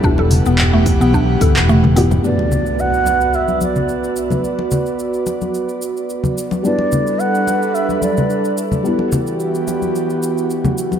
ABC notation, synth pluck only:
X:1
M:4/4
L:1/16
Q:"Swing 16ths" 1/4=109
K:Bm
V:1 name="Synth pluck"
D A z B,2 A,2 B, D z A z A,2 B,2 | z16 | z16 | z16 |
z16 |]